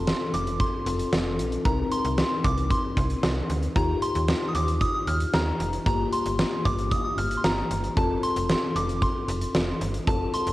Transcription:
Already playing: fm bass F1, tine electric piano C4 F4 A4, synth bell C6
0.07 snare, closed hi-hat
0.34 fm bass F1, synth bell D6, closed hi-hat
0.47 closed hi-hat
0.60 synth bell C6, kick, closed hi-hat
0.86 fm bass F1, tine electric piano C4 F4 A4, closed hi-hat
0.99 closed hi-hat
1.13 fm bass F1, snare, closed hi-hat
1.39 fm bass A#1, closed hi-hat
1.52 closed hi-hat
1.65 fm bass C2, tine electric piano C4 D#4 A#4, synth bell A#5, kick, closed hi-hat
1.92 synth bell C6, closed hi-hat
2.05 fm bass C2, closed hi-hat
2.18 snare, closed hi-hat
2.44 fm bass C2, synth bell D6, kick, closed hi-hat
2.58 closed hi-hat
2.70 synth bell C6, kick, closed hi-hat
2.97 fm bass C2, kick, closed hi-hat
3.10 closed hi-hat
3.23 fm bass C2, snare, closed hi-hat
3.50 fm bass D2, closed hi-hat
3.63 closed hi-hat
3.76 fm bass D#2, tine electric piano D#4 F4 G4, synth bell A#5, kick, closed hi-hat
4.02 synth bell C6, closed hi-hat
4.15 fm bass D#2, closed hi-hat
4.28 snare, closed hi-hat
4.48 synth bell D#6
4.55 fm bass D#2, synth bell D6, closed hi-hat
4.68 closed hi-hat
4.81 synth bell D#6, kick, closed hi-hat
4.94 synth bell D#6
5.07 fm bass D#2, synth bell F6, closed hi-hat
5.20 closed hi-hat
5.34 fm bass D#2, synth bell A#5, snare, closed hi-hat
5.60 fm bass F1, closed hi-hat
5.73 closed hi-hat
5.86 fm bass G1, tine electric piano A#3 F4 G4, synth bell A#5, kick, closed hi-hat
6.13 synth bell C6, closed hi-hat
6.26 fm bass G1, closed hi-hat
6.39 snare, closed hi-hat
6.65 fm bass G1, synth bell D6, kick, closed hi-hat
6.79 closed hi-hat
6.91 synth bell D#6, kick, closed hi-hat
7.05 synth bell D#6
7.18 fm bass G1, synth bell F6, closed hi-hat
7.31 closed hi-hat
7.37 synth bell C6
7.44 fm bass G1, synth bell A#5, snare, closed hi-hat
7.71 fm bass G1, closed hi-hat
7.84 closed hi-hat
7.97 fm bass F1, tine electric piano C4 F4 A4, synth bell A5, kick, closed hi-hat
8.23 synth bell C6, closed hi-hat
8.36 fm bass F1, closed hi-hat
8.49 snare, closed hi-hat
8.76 fm bass F1, synth bell D6, closed hi-hat
8.89 closed hi-hat
9.02 synth bell C6, kick, closed hi-hat
9.28 fm bass F1, closed hi-hat
9.41 closed hi-hat
9.55 fm bass F1, snare, closed hi-hat
9.81 fm bass G1, closed hi-hat
9.94 closed hi-hat
10.07 fm bass F1, tine electric piano C4 F4 A4, synth bell A5, kick, closed hi-hat
10.34 synth bell C6, closed hi-hat
10.47 fm bass F1, closed hi-hat

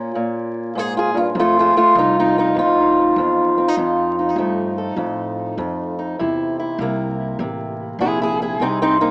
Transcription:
Already playing: steel-string acoustic guitar A#2 C#4
0.15 steel-string acoustic guitar A#2
0.75 steel-string acoustic guitar G#2 G#4
0.97 steel-string acoustic guitar F4 G#4
1.14 steel-string acoustic guitar G2 F4
1.35 steel-string acoustic guitar F2, upright bass F2
1.40 steel-string acoustic guitar A3 F4
1.59 steel-string acoustic guitar A3 F4
1.76 steel-string acoustic guitar A3 F4, muted upright bass stroke
1.95 upright bass C2, steel-string acoustic guitar F2 D#4
1.99 steel-string acoustic guitar C4
2.19 steel-string acoustic guitar C4 D#4
2.38 steel-string acoustic guitar C4 D#4
2.54 upright bass D2, steel-string acoustic guitar F2
2.59 steel-string acoustic guitar F4
3.16 upright bass E2, steel-string acoustic guitar F2
3.57 steel-string acoustic guitar C4, muted upright bass stroke
3.68 steel-string acoustic guitar D#4
3.77 upright bass F2, steel-string acoustic guitar F2 D#4
4.19 steel-string acoustic guitar D#4
4.36 steel-string acoustic guitar F2 A3, upright bass G2
4.78 steel-string acoustic guitar A4
4.96 steel-string acoustic guitar F2, upright bass A2
5.58 upright bass F2, steel-string acoustic guitar F2
5.99 steel-string acoustic guitar D#4
6.19 upright bass E2, steel-string acoustic guitar C3 E4
6.60 steel-string acoustic guitar E4
6.79 upright bass C2, steel-string acoustic guitar C3 A#3
7.39 upright bass A1, steel-string acoustic guitar C3
7.99 upright bass A#1, steel-string acoustic guitar C3 E4 G#4
8.22 steel-string acoustic guitar E4 G#4
8.42 steel-string acoustic guitar E4 G#4
8.60 upright bass C2, steel-string acoustic guitar C3 C4 D#4
8.82 steel-string acoustic guitar C4 D#4
9.01 steel-string acoustic guitar A#3 C4 D#4

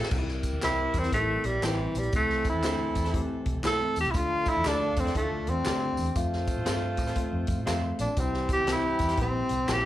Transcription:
Already playing: saxophone section E3 C4 A4
0.03 snare
0.11 fingered electric bass C2, saxophone section G3 E4 A#4, tine electric piano G3 C4 D#4, kick, crash, tambourine
0.18 tine electric piano E4
0.28 snare
0.43 kick, closed hi-hat, tambourine
0.53 fingered electric bass D2
0.61 fingered electric bass C2, tine electric piano G3 C4 E4, clean electric guitar C4 E4 G4 C5, tenor saxophone E4, snare, clap, closed hi-hat, tambourine
0.94 fingered electric bass E2, kick, closed hi-hat, tambourine
0.98 tenor saxophone C4
1.02 clean electric guitar C4 E4 G4 C5, snare, closed hi-hat
1.12 fingered electric bass A1, tine electric piano G3 C4 D#4, tenor saxophone A3, kick, closed hi-hat, tambourine
1.19 tine electric piano E4
1.44 fingered electric bass A#1, tenor saxophone G3, closed hi-hat
1.62 fingered electric bass A1, tenor saxophone E3, tine electric piano G3 C4 D#4, clean electric guitar C4 E4 G4 C5, snare, clap, closed hi-hat, tambourine
1.69 tine electric piano E4
1.95 fingered electric bass A#1, tenor saxophone G3, closed hi-hat, tambourine
2.03 closed hi-hat
2.12 fingered electric bass C2, saxophone section E3 C4 A4, tine electric piano A3 C4 E4, tenor saxophone A3, kick, closed hi-hat, tambourine
2.30 snare
2.44 kick, closed hi-hat, tambourine
2.49 tenor saxophone E4
2.54 fingered electric bass E2
2.63 fingered electric bass D2, tine electric piano A3 C4 D4, clean electric guitar C4 E4 A4 C5, snare, clap, closed hi-hat, tambourine
2.95 fingered electric bass E2, kick, closed hi-hat, tambourine
3.04 clean electric guitar C4 E4 A4 C5, snare, closed hi-hat
3.13 tine electric piano A3 C4 G4, kick, closed hi-hat
3.46 fingered electric bass C2, kick, closed hi-hat
3.55 fingered electric bass C2
3.63 tine electric piano A3 C4 E4, clean electric guitar C4 E4 A4 C5, tenor saxophone A4, snare, clap, closed hi-hat, tambourine
3.96 fingered electric bass E2, closed hi-hat, tambourine
4.01 tenor saxophone G4
4.05 fingered electric bass C2, closed hi-hat
4.11 fingered electric bass D2, saxophone section F3 D4 A4, tine electric piano A3 D4 F4, tenor saxophone E4, kick, closed hi-hat, tambourine
4.17 tenor saxophone F4
4.46 tenor saxophone E4, kick, closed hi-hat, tambourine
4.57 fingered electric bass E2
4.64 fingered electric bass D2, tine electric piano A3 D4 F4, clean electric guitar D4 F4 A4 D5, tenor saxophone D4, snare, clap, closed hi-hat, tambourine
4.96 fingered electric bass F2, tenor saxophone C4, kick, closed hi-hat, tambourine
5.05 clean electric guitar D4 F4 A4 D5, snare, closed hi-hat
5.15 fingered electric bass D2, tine electric piano A3 D4 E4, tenor saxophone A3, kick, closed hi-hat, tambourine
5.22 tine electric piano F4
5.47 fingered electric bass E2, tenor saxophone C4, closed hi-hat
5.64 fingered electric bass D2, tine electric piano A3 D4 G4, clean electric guitar D4 F4 A4 D5, snare, clap, closed hi-hat, tambourine
5.97 fingered electric bass E2, open hi-hat, tambourine
6.06 closed hi-hat
6.15 fingered electric bass F2, tine electric piano A3 C4 F4, saxophone section A3 F4 C5, kick, closed hi-hat, tambourine
6.33 snare
6.47 kick, closed hi-hat, tambourine
6.57 fingered electric bass A2
6.65 fingered electric bass G2, tine electric piano A3 C4 F4, clean electric guitar C4 F4 A4 C5, snare, clap, closed hi-hat, tambourine
6.97 fingered electric bass A2, kick, closed hi-hat, tambourine
7.07 clean electric guitar C4 F4 A4 C5, snare, closed hi-hat
7.16 tine electric piano A3 C4 F4, kick, closed hi-hat, tambourine
7.33 fingered electric bass F2
7.47 fingered electric bass F2, kick, closed hi-hat, tambourine
7.58 fingered electric bass A2
7.66 fingered electric bass F2, tine electric piano A3 C4 F4, clean electric guitar C4 F4 A4 C5, snare, clap, closed hi-hat, tambourine
7.99 fingered electric bass A#1, tenor saxophone D4, closed hi-hat, tambourine
8.17 fingered electric bass C2, saxophone section E3 C4 G4, tine electric piano G3 C4 E4, tenor saxophone C4, kick, closed hi-hat, tambourine
8.34 snare
8.49 tenor saxophone G4, kick, closed hi-hat, tambourine
8.59 fingered electric bass D2
8.67 fingered electric bass C2, tine electric piano G3 C4 G4, clean electric guitar C4 E4 G4 C5, snare, clap, closed hi-hat, tambourine
8.72 tenor saxophone E4
8.99 fingered electric bass E2, kick, closed hi-hat, tambourine
9.09 clean electric guitar C4 E4 G4 C5, snare, closed hi-hat
9.17 fingered electric bass A#1, tine electric piano G3 C4 E4, kick, closed hi-hat
9.22 tenor saxophone C4
9.49 fingered electric bass C2, closed hi-hat, tambourine
9.67 fingered electric bass A#1, tine electric piano G3 C4 E4, clean electric guitar C4 E4 G4 C5, snare, clap, closed hi-hat, tambourine
9.73 tenor saxophone G4

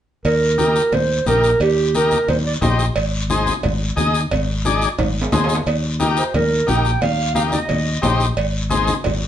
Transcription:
0.25 fingered electric bass D#2, clarinet A#4, cowbell, long guiro
0.58 transistor combo organ D#4 G4 A#4, clarinet A#4, high conga, short guiro
0.76 short guiro
0.92 fingered electric bass D#2, clarinet C5, cowbell, low conga, long guiro
1.26 fingered electric bass A#1, transistor combo organ D#4 G4 A#4, clarinet A#4, high conga, short guiro
1.44 short guiro
1.60 fingered electric bass D#2, clarinet G4, cowbell, long guiro
1.95 transistor combo organ D#4 G4 A#4, clarinet A#4, high conga, short guiro
2.11 high conga, short guiro
2.28 fingered electric bass D#2, clarinet C5, cowbell, low conga, long guiro
2.47 clarinet D5
2.61 fingered electric bass A#1, transistor combo organ D#4 G4 C5, clarinet D#5, high conga, low conga, low timbale, short guiro
2.79 short guiro
2.96 fingered electric bass G#1, cowbell, long guiro
3.29 transistor combo organ D#4 G#4 C5, high conga, short guiro
3.46 high conga, short guiro
3.63 fingered electric bass G#1, cowbell, low conga, long guiro
3.96 fingered electric bass D#2, transistor combo organ D#4 G#4 D#5, high conga, short guiro
4.15 short guiro
4.31 fingered electric bass G#1, cowbell, low conga, long guiro
4.65 transistor combo organ D#4 G#4 D5, high conga, short guiro
4.82 short guiro
4.98 fingered electric bass G#1, cowbell, low conga, high timbale, long guiro
5.22 low timbale
5.32 fingered electric bass D#2, transistor combo organ D#4 G#4 C5, high conga, low conga, low timbale, short guiro
5.44 low timbale
5.49 short guiro
5.55 low timbale
5.66 fingered electric bass D#2, cowbell, long guiro
6.00 transistor combo organ D#4 G4 A#4, high conga, short guiro
6.17 clarinet C5, short guiro
6.34 fingered electric bass D#2, clarinet A#4, cowbell, low conga, long guiro
6.67 fingered electric bass A#1, transistor combo organ D#4 G4 A#4, clarinet G5, high conga, short guiro
6.85 short guiro
7.01 fingered electric bass D#2, clarinet F5, cowbell, low conga, long guiro
7.35 transistor combo organ D#4 G4 A#4, clarinet F5, high conga, short guiro
7.52 clarinet D#5, high conga, short guiro
7.69 fingered electric bass D#2, cowbell, low conga, long guiro
8.02 fingered electric bass A#1, transistor combo organ D#4 G4 C5, high conga, low timbale, short guiro
8.20 short guiro
8.37 fingered electric bass G#1, cowbell, long guiro
8.70 transistor combo organ D#4 G#4 C5, high conga, short guiro
8.88 high conga, short guiro
9.04 fingered electric bass G#1, cowbell, low conga, long guiro

